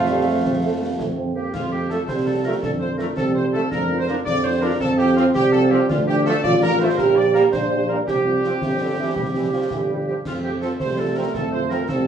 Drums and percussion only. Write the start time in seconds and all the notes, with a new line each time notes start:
0.45 concert bass drum, snare
0.99 concert bass drum, snare
1.54 concert bass drum, snare, crash
1.90 snare
2.08 concert bass drum, snare
2.63 concert bass drum, snare
2.99 snare
3.17 concert bass drum, snare
3.72 concert bass drum, snare
4.08 snare
4.26 concert bass drum, snare
4.80 concert bass drum, snare
5.17 snare
5.35 concert bass drum, snare
5.89 concert bass drum, snare, crash
6.26 snare
6.44 concert bass drum, snare
6.98 concert bass drum, snare
7.35 snare
7.53 concert bass drum, snare
8.08 concert bass drum, snare
8.44 snare
8.62 concert bass drum, snare
9.16 concert bass drum, snare
9.71 concert bass drum, snare
10.25 concert bass drum, snare, crash
10.62 snare
10.80 concert bass drum, snare
11.34 concert bass drum, snare
11.71 snare
11.89 concert bass drum, snare